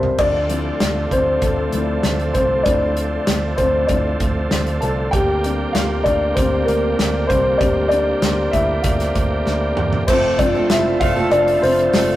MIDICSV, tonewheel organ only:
0, 0, Header, 1, 2, 480
1, 0, Start_track
1, 0, Tempo, 618429
1, 147, Time_signature, 4, 2, 24, 8
1, 9439, End_track
2, 0, Start_track
2, 0, Title_t, "Tonewheel organ"
2, 0, Program_c, 0, 16
2, 143, Note_on_c, 0, 50, 60
2, 146, Note_on_c, 0, 57, 54
2, 147, Note_on_c, 0, 53, 68
2, 149, Note_on_c, 0, 60, 56
2, 3953, Note_off_c, 0, 50, 0
2, 3955, Note_off_c, 0, 53, 0
2, 3955, Note_off_c, 0, 57, 0
2, 3981, Note_on_c, 0, 58, 56
2, 3982, Note_on_c, 0, 67, 71
2, 3985, Note_on_c, 0, 50, 68
2, 7792, Note_off_c, 0, 58, 0
2, 7793, Note_off_c, 0, 67, 0
2, 7794, Note_off_c, 0, 50, 0
2, 7796, Note_off_c, 0, 60, 0
2, 7833, Note_on_c, 0, 53, 73
2, 7833, Note_on_c, 0, 57, 60
2, 7833, Note_on_c, 0, 60, 74
2, 9439, Note_off_c, 0, 53, 0
2, 9439, Note_off_c, 0, 57, 0
2, 9439, Note_off_c, 0, 60, 0
2, 9439, End_track
0, 0, End_of_file